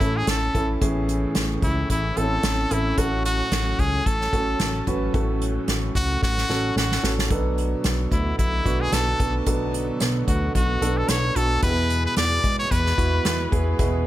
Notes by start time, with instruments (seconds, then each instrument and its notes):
Already playing: upright piano A2 E3, string section E3 A3 C#4, trumpet E4
0.00 analog synth bass A1, upright piano C#4 E4 A4, kick, closed hi-hat
0.16 trumpet G#4
0.27 analog synth bass A1, trumpet A4, snare, closed hi-hat
0.54 analog synth bass A1, upright piano C#4 E4 A4, kick, closed hi-hat
0.81 analog synth bass A1, upright piano A2 E3 C#4 E4 G#4, string section A3, kick, closed hi-hat
1.09 closed hi-hat
1.35 analog synth bass A1, snare, closed hi-hat
1.62 analog synth bass C#2, trumpet E4, kick, closed hi-hat
1.90 analog synth bass A1, trumpet E4, kick, closed hi-hat
2.17 analog synth bass A1, upright piano C4 E4 A4, trumpet A4, closed hi-hat
2.23 upright piano C#4
2.43 analog synth bass A1, snare, closed hi-hat
2.71 analog synth bass A1, upright piano C#4 E4 A4, trumpet E4, closed hi-hat
2.98 analog synth bass A1, upright piano A2 A3 C#4 F#4 A4, string section F#3 A3, trumpet F#4, kick, closed hi-hat
3.25 trumpet F#4, closed hi-hat
3.52 analog synth bass A1, snare, closed hi-hat
3.79 analog synth bass C#2, trumpet G#4, kick, closed hi-hat
4.06 analog synth bass A1, trumpet A4, kick, closed hi-hat
4.21 snare
4.33 analog synth bass A1, upright piano C#4 F#4 A4, kick, closed hi-hat
4.60 analog synth bass A1, snare, closed hi-hat
4.87 analog synth bass A1, upright piano C#4 F#4 B4, kick, closed hi-hat
5.14 analog synth bass A1, upright piano A2 A3 C#4 F#4 A4, kick, closed hi-hat
5.42 closed hi-hat
5.68 analog synth bass A1, snare, closed hi-hat
5.95 analog synth bass C#2, trumpet F#4, kick, closed hi-hat
6.22 analog synth bass A1, trumpet F#4, kick, snare
6.38 snare
6.49 analog synth bass A1, upright piano C#4 F#4 A4, snare
6.76 analog synth bass A1, trumpet F#4, snare
6.92 snare
7.03 analog synth bass A1, upright piano C#4 F#4 A4, snare
7.19 snare
7.30 analog synth bass B1, upright piano B2 F#3 B3 D4 A4, string section D3 A3 B3, kick, closed hi-hat
7.58 closed hi-hat
7.84 analog synth bass B1, snare, closed hi-hat
8.12 analog synth bass D2, trumpet E4, kick, closed hi-hat
8.39 analog synth bass B1, trumpet E4, kick, closed hi-hat
8.65 analog synth bass B1, upright piano B3 D4 F#4, kick, closed hi-hat
8.81 trumpet G#4
8.92 analog synth bass B1, trumpet A4, snare, closed hi-hat
9.20 analog synth bass B1, upright piano B3 D4 A4, kick, closed hi-hat
9.46 analog synth bass B1, upright piano B2 F#3 B3 D4 A4, kick, closed hi-hat
9.74 closed hi-hat
10.00 analog synth bass B1, snare, closed hi-hat
10.28 analog synth bass D2, trumpet F#4, kick, closed hi-hat
10.55 analog synth bass B1, trumpet F#4, kick, closed hi-hat
10.81 analog synth bass B1, upright piano B3 D4 A4, closed hi-hat
10.97 trumpet A4
11.08 analog synth bass B1, trumpet C#5, snare, closed hi-hat
11.36 analog synth bass B1, upright piano B3 D4 F#4, trumpet A4, closed hi-hat
11.62 analog synth bass E2, upright piano B2 B3 E4 G4, string section E3 G#3 B3, trumpet B4, kick, closed hi-hat
11.70 upright piano G#4
11.90 closed hi-hat
12.05 trumpet B4
12.16 analog synth bass E2, trumpet D5, snare, closed hi-hat
12.44 analog synth bass G#2, kick, closed hi-hat
12.59 trumpet C#5
12.71 analog synth bass E2, trumpet B4, kick, closed hi-hat
12.86 snare
12.98 analog synth bass E2, upright piano B3 E4 F#4, kick, closed hi-hat
13.25 analog synth bass E2, snare, closed hi-hat
13.52 analog synth bass E2, upright piano B3 E4 G#4, kick, closed hi-hat
13.79 analog synth bass E2, upright piano B2 B3 E4 G#4, kick, closed hi-hat